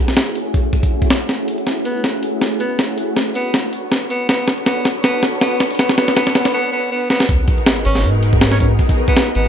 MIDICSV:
0, 0, Header, 1, 6, 480
1, 0, Start_track
1, 0, Tempo, 375000
1, 1654, Time_signature, 4, 2, 24, 8
1, 12137, End_track
2, 0, Start_track
2, 0, Title_t, "String machine"
2, 0, Program_c, 0, 50
2, 0, Note_on_c, 0, 57, 98
2, 0, Note_on_c, 0, 61, 90
2, 0, Note_on_c, 0, 64, 83
2, 0, Note_on_c, 0, 66, 85
2, 0, Note_on_c, 0, 68, 107
2, 426, Note_off_c, 0, 57, 0
2, 427, Note_off_c, 0, 61, 0
2, 427, Note_off_c, 0, 64, 0
2, 427, Note_off_c, 0, 68, 0
2, 428, Note_off_c, 0, 66, 0
2, 452, Note_on_c, 0, 66, 78
2, 453, Note_on_c, 0, 68, 94
2, 454, Note_on_c, 0, 57, 86
2, 454, Note_on_c, 0, 61, 78
2, 455, Note_on_c, 0, 64, 80
2, 906, Note_off_c, 0, 66, 0
2, 907, Note_off_c, 0, 57, 0
2, 907, Note_off_c, 0, 61, 0
2, 907, Note_off_c, 0, 68, 0
2, 908, Note_off_c, 0, 64, 0
2, 1066, Note_on_c, 0, 64, 95
2, 1067, Note_on_c, 0, 57, 102
2, 1067, Note_on_c, 0, 66, 99
2, 1068, Note_on_c, 0, 61, 96
2, 1068, Note_on_c, 0, 68, 113
2, 1629, Note_off_c, 0, 57, 0
2, 1629, Note_off_c, 0, 61, 0
2, 1629, Note_off_c, 0, 64, 0
2, 1629, Note_off_c, 0, 66, 0
2, 1629, Note_off_c, 0, 68, 0
2, 1656, Note_on_c, 0, 57, 93
2, 1656, Note_on_c, 0, 66, 85
2, 1657, Note_on_c, 0, 64, 81
2, 1658, Note_on_c, 0, 61, 81
2, 1659, Note_on_c, 0, 68, 99
2, 2348, Note_off_c, 0, 57, 0
2, 2349, Note_off_c, 0, 64, 0
2, 2349, Note_off_c, 0, 66, 0
2, 2350, Note_off_c, 0, 61, 0
2, 2350, Note_off_c, 0, 68, 0
2, 2371, Note_on_c, 0, 68, 115
2, 2373, Note_on_c, 0, 57, 105
2, 2373, Note_on_c, 0, 64, 97
2, 2373, Note_on_c, 0, 66, 97
2, 2374, Note_on_c, 0, 61, 99
2, 3546, Note_off_c, 0, 68, 0
2, 3547, Note_off_c, 0, 57, 0
2, 3547, Note_off_c, 0, 64, 0
2, 3547, Note_off_c, 0, 66, 0
2, 3548, Note_off_c, 0, 61, 0
2, 3571, Note_on_c, 0, 61, 91
2, 3571, Note_on_c, 0, 64, 85
2, 3571, Note_on_c, 0, 68, 104
2, 3572, Note_on_c, 0, 57, 96
2, 3573, Note_on_c, 0, 66, 86
2, 4266, Note_off_c, 0, 61, 0
2, 4266, Note_off_c, 0, 64, 0
2, 4266, Note_off_c, 0, 68, 0
2, 4267, Note_off_c, 0, 57, 0
2, 4267, Note_off_c, 0, 66, 0
2, 4290, Note_on_c, 0, 73, 95
2, 4292, Note_on_c, 0, 66, 80
2, 4292, Note_on_c, 0, 71, 79
2, 4293, Note_on_c, 0, 69, 78
2, 4294, Note_on_c, 0, 62, 86
2, 4746, Note_off_c, 0, 66, 0
2, 4746, Note_off_c, 0, 73, 0
2, 4747, Note_off_c, 0, 62, 0
2, 4747, Note_off_c, 0, 69, 0
2, 4747, Note_off_c, 0, 71, 0
2, 5496, Note_on_c, 0, 71, 81
2, 5496, Note_on_c, 0, 73, 103
2, 5497, Note_on_c, 0, 66, 84
2, 5498, Note_on_c, 0, 62, 92
2, 5499, Note_on_c, 0, 69, 81
2, 6188, Note_off_c, 0, 73, 0
2, 6189, Note_off_c, 0, 62, 0
2, 6189, Note_off_c, 0, 66, 0
2, 6189, Note_off_c, 0, 71, 0
2, 6190, Note_off_c, 0, 69, 0
2, 6215, Note_on_c, 0, 66, 97
2, 6216, Note_on_c, 0, 62, 107
2, 6216, Note_on_c, 0, 69, 100
2, 6217, Note_on_c, 0, 71, 95
2, 6218, Note_on_c, 0, 73, 116
2, 7388, Note_off_c, 0, 62, 0
2, 7388, Note_off_c, 0, 66, 0
2, 7388, Note_off_c, 0, 69, 0
2, 7389, Note_off_c, 0, 71, 0
2, 7389, Note_off_c, 0, 73, 0
2, 7414, Note_on_c, 0, 66, 88
2, 7415, Note_on_c, 0, 69, 90
2, 7416, Note_on_c, 0, 62, 96
2, 7416, Note_on_c, 0, 71, 86
2, 7416, Note_on_c, 0, 73, 108
2, 8107, Note_off_c, 0, 66, 0
2, 8108, Note_off_c, 0, 62, 0
2, 8108, Note_off_c, 0, 69, 0
2, 8108, Note_off_c, 0, 71, 0
2, 8109, Note_off_c, 0, 73, 0
2, 9332, Note_on_c, 0, 59, 91
2, 9332, Note_on_c, 0, 63, 81
2, 9332, Note_on_c, 0, 70, 101
2, 9333, Note_on_c, 0, 68, 83
2, 9334, Note_on_c, 0, 66, 81
2, 10026, Note_off_c, 0, 63, 0
2, 10026, Note_off_c, 0, 70, 0
2, 10027, Note_off_c, 0, 59, 0
2, 10027, Note_off_c, 0, 66, 0
2, 10027, Note_off_c, 0, 68, 0
2, 10058, Note_on_c, 0, 68, 96
2, 10059, Note_on_c, 0, 59, 108
2, 10060, Note_on_c, 0, 66, 102
2, 10060, Note_on_c, 0, 70, 117
2, 10061, Note_on_c, 0, 63, 102
2, 11229, Note_off_c, 0, 68, 0
2, 11230, Note_off_c, 0, 59, 0
2, 11230, Note_off_c, 0, 66, 0
2, 11230, Note_off_c, 0, 70, 0
2, 11231, Note_off_c, 0, 63, 0
2, 11255, Note_on_c, 0, 59, 98
2, 11255, Note_on_c, 0, 70, 107
2, 11256, Note_on_c, 0, 63, 86
2, 11256, Note_on_c, 0, 66, 87
2, 11256, Note_on_c, 0, 68, 87
2, 11948, Note_off_c, 0, 59, 0
2, 11948, Note_off_c, 0, 63, 0
2, 11948, Note_off_c, 0, 68, 0
2, 11948, Note_off_c, 0, 70, 0
2, 11949, Note_off_c, 0, 66, 0
2, 11975, Note_on_c, 0, 66, 77
2, 11976, Note_on_c, 0, 63, 80
2, 11976, Note_on_c, 0, 70, 94
2, 11978, Note_on_c, 0, 59, 87
2, 11978, Note_on_c, 0, 68, 80
2, 12137, Note_off_c, 0, 59, 0
2, 12137, Note_off_c, 0, 63, 0
2, 12137, Note_off_c, 0, 66, 0
2, 12137, Note_off_c, 0, 68, 0
2, 12137, Note_off_c, 0, 70, 0
2, 12137, End_track
3, 0, Start_track
3, 0, Title_t, "Tenor saxophone"
3, 0, Program_c, 1, 66
3, 2369, Note_on_c, 1, 59, 87
3, 2594, Note_off_c, 1, 59, 0
3, 3329, Note_on_c, 1, 59, 84
3, 3554, Note_off_c, 1, 59, 0
3, 4292, Note_on_c, 1, 59, 85
3, 4515, Note_off_c, 1, 59, 0
3, 5253, Note_on_c, 1, 59, 89
3, 5475, Note_off_c, 1, 59, 0
3, 5492, Note_on_c, 1, 59, 90
3, 5785, Note_off_c, 1, 59, 0
3, 5973, Note_on_c, 1, 59, 94
3, 6265, Note_off_c, 1, 59, 0
3, 6451, Note_on_c, 1, 59, 99
3, 6744, Note_off_c, 1, 59, 0
3, 6930, Note_on_c, 1, 59, 95
3, 7224, Note_off_c, 1, 59, 0
3, 7415, Note_on_c, 1, 59, 93
3, 7636, Note_off_c, 1, 59, 0
3, 7648, Note_on_c, 1, 59, 97
3, 7873, Note_off_c, 1, 59, 0
3, 7888, Note_on_c, 1, 59, 98
3, 8113, Note_off_c, 1, 59, 0
3, 8131, Note_on_c, 1, 59, 95
3, 8355, Note_off_c, 1, 59, 0
3, 8369, Note_on_c, 1, 59, 100
3, 8594, Note_off_c, 1, 59, 0
3, 8609, Note_on_c, 1, 59, 95
3, 8833, Note_off_c, 1, 59, 0
3, 8850, Note_on_c, 1, 59, 98
3, 9074, Note_off_c, 1, 59, 0
3, 9093, Note_on_c, 1, 59, 99
3, 9316, Note_off_c, 1, 59, 0
3, 10056, Note_on_c, 1, 61, 92
3, 10346, Note_off_c, 1, 61, 0
3, 10899, Note_on_c, 1, 61, 89
3, 10972, Note_off_c, 1, 61, 0
3, 11014, Note_on_c, 1, 61, 72
3, 11097, Note_off_c, 1, 61, 0
3, 11625, Note_on_c, 1, 59, 91
3, 11908, Note_off_c, 1, 59, 0
3, 11972, Note_on_c, 1, 59, 91
3, 12137, Note_off_c, 1, 59, 0
3, 12137, End_track
4, 0, Start_track
4, 0, Title_t, "Sub bass"
4, 0, Program_c, 2, 38
4, 454, Note_on_c, 2, 30, 101
4, 672, Note_off_c, 2, 30, 0
4, 1416, Note_on_c, 2, 37, 90
4, 2357, Note_off_c, 2, 37, 0
4, 2371, Note_on_c, 2, 30, 101
4, 2613, Note_on_c, 2, 42, 89
4, 2632, Note_off_c, 2, 30, 0
4, 3556, Note_off_c, 2, 42, 0
4, 4293, Note_on_c, 2, 30, 103
4, 4773, Note_on_c, 2, 35, 83
4, 4792, Note_off_c, 2, 30, 0
4, 5036, Note_off_c, 2, 35, 0
4, 5252, Note_on_c, 2, 35, 105
4, 6195, Note_off_c, 2, 35, 0
4, 10054, Note_on_c, 2, 32, 104
4, 10293, Note_on_c, 2, 44, 87
4, 10312, Note_off_c, 2, 32, 0
4, 11236, Note_off_c, 2, 44, 0
4, 11974, Note_on_c, 2, 32, 103
4, 12137, Note_off_c, 2, 32, 0
4, 12137, End_track
5, 0, Start_track
5, 0, Title_t, "Sub drop"
5, 0, Program_c, 3, 103
5, 9332, Note_on_c, 3, 60, 77
5, 11253, Note_off_c, 3, 60, 0
5, 12137, End_track
6, 0, Start_track
6, 0, Title_t, "Drums"
6, 105, Note_on_c, 9, 38, 54
6, 213, Note_off_c, 9, 38, 0
6, 213, Note_on_c, 9, 38, 113
6, 213, Note_on_c, 9, 46, 88
6, 341, Note_off_c, 9, 38, 0
6, 341, Note_off_c, 9, 46, 0
6, 453, Note_on_c, 9, 46, 67
6, 581, Note_off_c, 9, 46, 0
6, 694, Note_on_c, 9, 36, 96
6, 694, Note_on_c, 9, 46, 75
6, 822, Note_off_c, 9, 36, 0
6, 822, Note_off_c, 9, 46, 0
6, 934, Note_on_c, 9, 36, 82
6, 934, Note_on_c, 9, 46, 61
6, 1062, Note_off_c, 9, 36, 0
6, 1062, Note_off_c, 9, 46, 0
6, 1064, Note_on_c, 9, 36, 91
6, 1064, Note_on_c, 9, 46, 77
6, 1192, Note_off_c, 9, 36, 0
6, 1192, Note_off_c, 9, 46, 0
6, 1303, Note_on_c, 9, 36, 84
6, 1304, Note_on_c, 9, 46, 61
6, 1413, Note_off_c, 9, 46, 0
6, 1413, Note_on_c, 9, 38, 115
6, 1413, Note_on_c, 9, 46, 67
6, 1431, Note_off_c, 9, 36, 0
6, 1541, Note_off_c, 9, 38, 0
6, 1541, Note_off_c, 9, 46, 0
6, 1652, Note_on_c, 9, 38, 48
6, 1652, Note_on_c, 9, 46, 84
6, 1780, Note_off_c, 9, 38, 0
6, 1780, Note_off_c, 9, 46, 0
6, 1894, Note_on_c, 9, 46, 69
6, 2022, Note_off_c, 9, 46, 0
6, 2022, Note_on_c, 9, 42, 44
6, 2134, Note_on_c, 9, 38, 50
6, 2134, Note_on_c, 9, 46, 89
6, 2150, Note_off_c, 9, 42, 0
6, 2262, Note_off_c, 9, 38, 0
6, 2262, Note_off_c, 9, 46, 0
6, 2372, Note_on_c, 9, 46, 70
6, 2500, Note_off_c, 9, 46, 0
6, 2611, Note_on_c, 9, 38, 52
6, 2611, Note_on_c, 9, 46, 87
6, 2739, Note_off_c, 9, 38, 0
6, 2739, Note_off_c, 9, 46, 0
6, 2851, Note_on_c, 9, 46, 68
6, 2979, Note_off_c, 9, 46, 0
6, 3091, Note_on_c, 9, 38, 54
6, 3091, Note_on_c, 9, 46, 78
6, 3219, Note_off_c, 9, 38, 0
6, 3219, Note_off_c, 9, 46, 0
6, 3329, Note_on_c, 9, 46, 66
6, 3457, Note_off_c, 9, 46, 0
6, 3570, Note_on_c, 9, 38, 58
6, 3570, Note_on_c, 9, 46, 88
6, 3698, Note_off_c, 9, 38, 0
6, 3698, Note_off_c, 9, 46, 0
6, 3810, Note_on_c, 9, 46, 70
6, 3938, Note_off_c, 9, 46, 0
6, 4051, Note_on_c, 9, 38, 62
6, 4051, Note_on_c, 9, 46, 89
6, 4179, Note_off_c, 9, 38, 0
6, 4179, Note_off_c, 9, 46, 0
6, 4292, Note_on_c, 9, 46, 71
6, 4420, Note_off_c, 9, 46, 0
6, 4531, Note_on_c, 9, 38, 66
6, 4531, Note_on_c, 9, 46, 86
6, 4659, Note_off_c, 9, 38, 0
6, 4659, Note_off_c, 9, 46, 0
6, 4771, Note_on_c, 9, 46, 68
6, 4899, Note_off_c, 9, 46, 0
6, 5013, Note_on_c, 9, 38, 68
6, 5013, Note_on_c, 9, 46, 87
6, 5141, Note_off_c, 9, 38, 0
6, 5141, Note_off_c, 9, 46, 0
6, 5251, Note_on_c, 9, 46, 70
6, 5379, Note_off_c, 9, 46, 0
6, 5492, Note_on_c, 9, 38, 72
6, 5492, Note_on_c, 9, 46, 89
6, 5620, Note_off_c, 9, 38, 0
6, 5620, Note_off_c, 9, 46, 0
6, 5730, Note_on_c, 9, 38, 80
6, 5730, Note_on_c, 9, 46, 72
6, 5858, Note_off_c, 9, 38, 0
6, 5858, Note_off_c, 9, 46, 0
6, 5859, Note_on_c, 9, 42, 45
6, 5970, Note_on_c, 9, 38, 80
6, 5970, Note_on_c, 9, 46, 89
6, 5987, Note_off_c, 9, 42, 0
6, 6098, Note_off_c, 9, 38, 0
6, 6098, Note_off_c, 9, 46, 0
6, 6212, Note_on_c, 9, 38, 83
6, 6212, Note_on_c, 9, 46, 71
6, 6340, Note_off_c, 9, 38, 0
6, 6340, Note_off_c, 9, 46, 0
6, 6451, Note_on_c, 9, 38, 82
6, 6451, Note_on_c, 9, 46, 87
6, 6579, Note_off_c, 9, 38, 0
6, 6579, Note_off_c, 9, 46, 0
6, 6691, Note_on_c, 9, 38, 83
6, 6691, Note_on_c, 9, 46, 67
6, 6819, Note_off_c, 9, 38, 0
6, 6819, Note_off_c, 9, 46, 0
6, 6930, Note_on_c, 9, 38, 89
6, 6930, Note_on_c, 9, 46, 79
6, 7058, Note_off_c, 9, 38, 0
6, 7058, Note_off_c, 9, 46, 0
6, 7172, Note_on_c, 9, 38, 91
6, 7172, Note_on_c, 9, 46, 82
6, 7300, Note_off_c, 9, 38, 0
6, 7300, Note_off_c, 9, 46, 0
6, 7302, Note_on_c, 9, 46, 67
6, 7358, Note_off_c, 9, 46, 0
6, 7358, Note_on_c, 9, 46, 66
6, 7414, Note_off_c, 9, 46, 0
6, 7414, Note_on_c, 9, 38, 93
6, 7414, Note_on_c, 9, 46, 88
6, 7542, Note_off_c, 9, 38, 0
6, 7542, Note_off_c, 9, 46, 0
6, 7545, Note_on_c, 9, 38, 82
6, 7652, Note_off_c, 9, 38, 0
6, 7652, Note_on_c, 9, 38, 94
6, 7652, Note_on_c, 9, 46, 83
6, 7780, Note_off_c, 9, 38, 0
6, 7780, Note_off_c, 9, 46, 0
6, 7784, Note_on_c, 9, 38, 85
6, 7892, Note_off_c, 9, 38, 0
6, 7892, Note_on_c, 9, 38, 99
6, 7892, Note_on_c, 9, 46, 89
6, 8020, Note_off_c, 9, 38, 0
6, 8020, Note_off_c, 9, 46, 0
6, 8023, Note_on_c, 9, 38, 86
6, 8131, Note_off_c, 9, 38, 0
6, 8131, Note_on_c, 9, 38, 100
6, 8131, Note_on_c, 9, 46, 82
6, 8259, Note_off_c, 9, 38, 0
6, 8259, Note_off_c, 9, 46, 0
6, 8259, Note_on_c, 9, 38, 92
6, 8259, Note_on_c, 9, 46, 84
6, 8387, Note_off_c, 9, 38, 0
6, 8387, Note_off_c, 9, 46, 0
6, 9090, Note_on_c, 9, 38, 62
6, 9218, Note_off_c, 9, 38, 0
6, 9220, Note_on_c, 9, 38, 75
6, 9332, Note_on_c, 9, 36, 109
6, 9332, Note_on_c, 9, 46, 86
6, 9348, Note_off_c, 9, 38, 0
6, 9460, Note_off_c, 9, 36, 0
6, 9460, Note_off_c, 9, 46, 0
6, 9570, Note_on_c, 9, 46, 69
6, 9572, Note_on_c, 9, 36, 100
6, 9698, Note_off_c, 9, 46, 0
6, 9700, Note_off_c, 9, 36, 0
6, 9702, Note_on_c, 9, 42, 43
6, 9811, Note_on_c, 9, 38, 120
6, 9811, Note_on_c, 9, 46, 87
6, 9830, Note_off_c, 9, 42, 0
6, 9939, Note_off_c, 9, 38, 0
6, 9939, Note_off_c, 9, 46, 0
6, 10050, Note_on_c, 9, 46, 70
6, 10178, Note_off_c, 9, 46, 0
6, 10179, Note_on_c, 9, 38, 42
6, 10289, Note_on_c, 9, 46, 87
6, 10307, Note_off_c, 9, 38, 0
6, 10417, Note_off_c, 9, 46, 0
6, 10531, Note_on_c, 9, 46, 68
6, 10659, Note_off_c, 9, 46, 0
6, 10662, Note_on_c, 9, 36, 93
6, 10770, Note_on_c, 9, 38, 115
6, 10770, Note_on_c, 9, 46, 78
6, 10790, Note_off_c, 9, 36, 0
6, 10898, Note_off_c, 9, 38, 0
6, 10898, Note_off_c, 9, 46, 0
6, 10901, Note_on_c, 9, 38, 47
6, 11011, Note_on_c, 9, 46, 79
6, 11012, Note_on_c, 9, 36, 101
6, 11029, Note_off_c, 9, 38, 0
6, 11139, Note_off_c, 9, 46, 0
6, 11140, Note_off_c, 9, 36, 0
6, 11250, Note_on_c, 9, 46, 64
6, 11252, Note_on_c, 9, 36, 85
6, 11378, Note_off_c, 9, 46, 0
6, 11380, Note_off_c, 9, 36, 0
6, 11380, Note_on_c, 9, 46, 80
6, 11382, Note_on_c, 9, 36, 99
6, 11508, Note_off_c, 9, 46, 0
6, 11510, Note_off_c, 9, 36, 0
6, 11620, Note_on_c, 9, 46, 63
6, 11622, Note_on_c, 9, 36, 90
6, 11732, Note_off_c, 9, 46, 0
6, 11732, Note_on_c, 9, 38, 119
6, 11732, Note_on_c, 9, 46, 87
6, 11750, Note_off_c, 9, 36, 0
6, 11860, Note_off_c, 9, 38, 0
6, 11860, Note_off_c, 9, 46, 0
6, 11969, Note_on_c, 9, 46, 71
6, 12097, Note_off_c, 9, 46, 0
6, 12137, End_track
0, 0, End_of_file